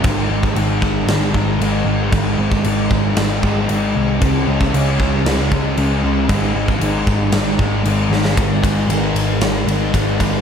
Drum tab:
CC |x---x---x---x---|x---x---x---x---|x---x---x---x---|x---x---x---x---|
RD |----------------|----------------|----------------|----------------|
SD |--------o-------|--------o-------|--------o-------|--------o-----oo|
BD |o--o--o---o-----|o--o--o---o-----|o--o--o---o-----|o--o--o---o-----|

CC |----------------|
RD |x-x-x-x-x-x-x-x-|
SD |--------o-------|
BD |o-o---------o-o-|